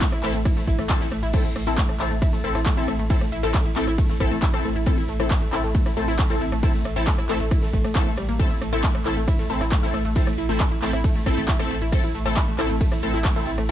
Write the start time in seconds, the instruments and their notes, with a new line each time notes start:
0.01 synth arpeggio sound A3, kick, snare, clap, closed hi-hat, ride
0.12 sub bass A1, synth arpeggio sound E4, cross-stick, closed hi-hat
0.23 sub bass A1, synth arpeggio sound A3, synth stab C4 E4 A4, clap, closed hi-hat, open hi-hat
0.34 sub bass A1, synth arpeggio sound A3, closed hi-hat
0.45 synth arpeggio sound E4, kick, cross-stick, closed hi-hat, ride
0.57 sub bass A1, synth arpeggio sound A3, snare, closed hi-hat
0.67 sub bass A1, synth arpeggio sound E4, kick, closed hi-hat, open hi-hat
0.79 sub bass A1, synth arpeggio sound A3, cross-stick, closed hi-hat
0.89 synth arpeggio sound A3, synth stab C4 E4 A4, kick, snare, clap, closed hi-hat, ride
1.01 sub bass A1, synth arpeggio sound E4, snare, closed hi-hat
1.12 sub bass A1, synth arpeggio sound A3, cross-stick, closed hi-hat, open hi-hat
1.23 sub bass A1, synth arpeggio sound E4, closed hi-hat
1.33 synth arpeggio sound A3, synth stab C4 E4 A4, kick, closed hi-hat, crash, ride
1.45 sub bass A1, synth arpeggio sound E4, closed hi-hat
1.56 sub bass A1, synth arpeggio sound A3, cross-stick, closed hi-hat, open hi-hat
1.67 sub bass A1, synth stab C4 E4 A4, synth arpeggio sound E4, closed hi-hat
1.78 synth arpeggio sound A3, kick, snare, clap, closed hi-hat, ride
1.89 sub bass A1, synth arpeggio sound A3, cross-stick, closed hi-hat
2.00 sub bass A1, synth stab C4 E4 A4, synth arpeggio sound E4, snare, clap, closed hi-hat, open hi-hat
2.11 sub bass A1, synth arpeggio sound A3, closed hi-hat
2.22 synth arpeggio sound E4, kick, cross-stick, closed hi-hat, ride
2.33 sub bass A1, synth arpeggio sound A3, snare, closed hi-hat
2.44 sub bass A1, synth arpeggio sound A3, synth stab C4 E4 A4, closed hi-hat, open hi-hat
2.55 sub bass A1, synth arpeggio sound E4, cross-stick, snare, closed hi-hat
2.66 synth arpeggio sound A3, kick, snare, clap, closed hi-hat, ride
2.77 sub bass A1, synth stab C4 E4 A4, synth arpeggio sound E4, snare, closed hi-hat
2.88 sub bass A1, synth arpeggio sound A3, cross-stick, closed hi-hat, open hi-hat
2.99 sub bass A1, synth arpeggio sound A3, closed hi-hat
3.10 synth stab C4 E4 A4, synth arpeggio sound E4, kick, closed hi-hat, ride
3.21 sub bass A1, synth arpeggio sound A3, cross-stick, snare, closed hi-hat
3.32 sub bass A1, synth arpeggio sound E4, closed hi-hat, open hi-hat
3.43 sub bass A1, synth arpeggio sound A3, synth stab C4 E4 A4, snare, closed hi-hat
3.54 synth arpeggio sound A3, kick, cross-stick, snare, clap, closed hi-hat, ride
3.65 sub bass A1, synth arpeggio sound E4, closed hi-hat
3.76 sub bass A1, synth arpeggio sound A3, synth stab C4 E4 A4, clap, closed hi-hat, open hi-hat
3.87 sub bass A1, synth arpeggio sound E4, cross-stick, closed hi-hat
3.98 synth arpeggio sound A3, kick, closed hi-hat, ride
4.09 sub bass A1, synth arpeggio sound A3, snare, closed hi-hat
4.20 sub bass A1, synth stab C4 E4 A4, synth arpeggio sound E4, kick, cross-stick, closed hi-hat, open hi-hat
4.31 sub bass A1, synth arpeggio sound A3, closed hi-hat
4.42 synth arpeggio sound E4, kick, snare, clap, closed hi-hat, ride
4.53 sub bass A1, synth arpeggio sound A3, synth stab C4 E4 A4, cross-stick, closed hi-hat
4.64 sub bass A1, synth arpeggio sound A3, closed hi-hat, open hi-hat
4.76 sub bass A1, synth arpeggio sound E4, closed hi-hat
4.86 synth arpeggio sound A3, synth stab C4 E4 A4, kick, cross-stick, closed hi-hat, ride
4.98 sub bass A1, synth arpeggio sound E4, closed hi-hat
5.08 sub bass A1, synth arpeggio sound A3, closed hi-hat, open hi-hat
5.20 sub bass A1, synth arpeggio sound A3, synth stab C4 E4 A4, cross-stick, closed hi-hat
5.31 synth arpeggio sound E4, kick, snare, clap, closed hi-hat, ride
5.42 sub bass A1, synth arpeggio sound A3, closed hi-hat
5.52 sub bass A1, synth stab C4 E4 A4, synth arpeggio sound E4, cross-stick, snare, clap, closed hi-hat, open hi-hat
5.64 sub bass A1, synth arpeggio sound A3, closed hi-hat
5.75 synth arpeggio sound A3, kick, closed hi-hat, ride
5.86 sub bass A1, synth arpeggio sound E4, cross-stick, snare, closed hi-hat
5.97 sub bass A1, synth arpeggio sound A3, synth stab C4 E4 A4, closed hi-hat, open hi-hat
6.08 sub bass A1, synth arpeggio sound E4, snare, closed hi-hat
6.18 synth arpeggio sound A3, kick, cross-stick, snare, clap, closed hi-hat, ride
6.30 sub bass A1, synth arpeggio sound A3, synth stab C4 E4 A4, snare, closed hi-hat
6.41 sub bass A1, synth arpeggio sound E4, closed hi-hat, open hi-hat
6.52 sub bass A1, synth arpeggio sound A3, cross-stick, closed hi-hat
6.63 synth stab C4 E4 A4, synth arpeggio sound E4, kick, closed hi-hat, ride
6.74 sub bass A1, synth arpeggio sound A3, snare, closed hi-hat
6.84 sub bass A1, synth arpeggio sound A3, cross-stick, closed hi-hat, open hi-hat
6.96 sub bass A1, synth stab C4 E4 A4, synth arpeggio sound E4, snare, closed hi-hat
7.06 synth arpeggio sound A3, kick, snare, clap, closed hi-hat, ride
7.18 sub bass A1, synth arpeggio sound E4, cross-stick, closed hi-hat
7.29 sub bass A1, synth arpeggio sound A3, synth stab C4 E4 A4, clap, closed hi-hat, open hi-hat
7.40 sub bass A1, synth arpeggio sound A3, closed hi-hat
7.51 synth arpeggio sound E4, kick, cross-stick, closed hi-hat, ride
7.62 sub bass A1, synth arpeggio sound A3, snare, closed hi-hat
7.73 sub bass A1, synth arpeggio sound A3, kick, closed hi-hat, open hi-hat
7.84 sub bass A1, synth arpeggio sound A3, cross-stick, closed hi-hat
7.95 synth arpeggio sound A#3, synth stab C4 E4 A4, kick, snare, clap, closed hi-hat, ride
8.06 sub bass A1, synth arpeggio sound A3, closed hi-hat
8.17 sub bass A1, synth arpeggio sound G3, cross-stick, closed hi-hat, open hi-hat
8.29 sub bass A1, synth arpeggio sound A#3, closed hi-hat
8.39 synth arpeggio sound A3, synth stab C4 E4 A4, kick, closed hi-hat, ride
8.51 sub bass A1, synth arpeggio sound E4, closed hi-hat
8.62 sub bass A1, synth arpeggio sound A3, cross-stick, closed hi-hat, open hi-hat
8.73 sub bass A1, synth stab C4 E4 A4, synth arpeggio sound E4, closed hi-hat
8.84 synth arpeggio sound A3, kick, snare, clap, closed hi-hat, ride
8.95 sub bass A1, synth arpeggio sound A3, cross-stick, closed hi-hat
9.06 sub bass A1, synth stab C4 E4 A4, synth arpeggio sound E4, snare, clap, closed hi-hat, open hi-hat
9.17 sub bass A1, synth arpeggio sound A3, closed hi-hat
9.28 synth arpeggio sound E4, kick, cross-stick, closed hi-hat, ride
9.38 sub bass A1, synth arpeggio sound A3, snare, closed hi-hat
9.50 sub bass A1, synth arpeggio sound A3, synth stab C4 E4 A4, closed hi-hat, open hi-hat
9.61 sub bass A1, synth arpeggio sound E4, cross-stick, snare, closed hi-hat
9.72 synth arpeggio sound A3, kick, snare, clap, closed hi-hat, ride
9.83 sub bass A1, synth stab C4 E4 A4, synth arpeggio sound E4, snare, closed hi-hat
9.94 sub bass A1, synth arpeggio sound A3, cross-stick, closed hi-hat, open hi-hat
10.05 sub bass A1, synth arpeggio sound A3, closed hi-hat
10.15 synth stab C4 E4 A4, synth arpeggio sound E4, kick, closed hi-hat, ride
10.27 sub bass A1, synth arpeggio sound A3, cross-stick, snare, closed hi-hat
10.38 sub bass A1, synth arpeggio sound E4, closed hi-hat, open hi-hat
10.49 sub bass A1, synth arpeggio sound A3, synth stab C4 E4 A4, snare, closed hi-hat
10.60 synth arpeggio sound A3, kick, cross-stick, snare, clap, closed hi-hat, ride
10.71 sub bass A1, synth arpeggio sound E4, closed hi-hat
10.82 sub bass A1, synth arpeggio sound A3, synth stab C4 E4 A4, clap, closed hi-hat, open hi-hat
10.93 sub bass A1, synth arpeggio sound E4, cross-stick, closed hi-hat
11.04 synth arpeggio sound A3, kick, closed hi-hat, ride
11.15 sub bass A1, synth arpeggio sound A3, snare, closed hi-hat
11.26 sub bass A1, synth stab C4 E4 A4, synth arpeggio sound E4, kick, cross-stick, closed hi-hat, open hi-hat
11.37 sub bass A1, synth arpeggio sound A3, closed hi-hat
11.48 synth arpeggio sound E4, kick, snare, clap, closed hi-hat, ride
11.59 sub bass A1, synth arpeggio sound A3, synth stab C4 E4 A4, cross-stick, closed hi-hat
11.70 sub bass A1, synth arpeggio sound A3, closed hi-hat, open hi-hat
11.81 sub bass A1, synth arpeggio sound E4, closed hi-hat
11.92 synth arpeggio sound A3, synth stab C4 E4 A4, kick, cross-stick, closed hi-hat, ride
12.04 sub bass A1, synth arpeggio sound E4, closed hi-hat
12.14 sub bass A1, synth arpeggio sound A3, closed hi-hat, open hi-hat
12.26 sub bass A1, synth arpeggio sound A3, synth stab C4 E4 A4, cross-stick, closed hi-hat
12.36 synth arpeggio sound E4, kick, snare, clap, closed hi-hat, ride
12.48 sub bass A1, synth arpeggio sound A3, closed hi-hat
12.58 sub bass A1, synth stab C4 E4 A4, synth arpeggio sound E4, cross-stick, snare, clap, closed hi-hat, open hi-hat
12.70 sub bass A1, synth arpeggio sound A3, closed hi-hat
12.81 synth arpeggio sound A3, kick, closed hi-hat, ride
12.92 sub bass A1, synth arpeggio sound E4, cross-stick, snare, closed hi-hat
13.02 sub bass A1, synth arpeggio sound A3, synth stab C4 E4 A4, closed hi-hat, open hi-hat
13.14 sub bass A1, synth arpeggio sound E4, snare, closed hi-hat
13.24 synth arpeggio sound A3, kick, cross-stick, snare, clap, closed hi-hat, ride
13.36 sub bass A1, synth arpeggio sound A3, synth stab C4 E4 A4, snare, closed hi-hat
13.46 sub bass A1, synth arpeggio sound E4, closed hi-hat, open hi-hat
13.58 sub bass A1, synth arpeggio sound A3, cross-stick, closed hi-hat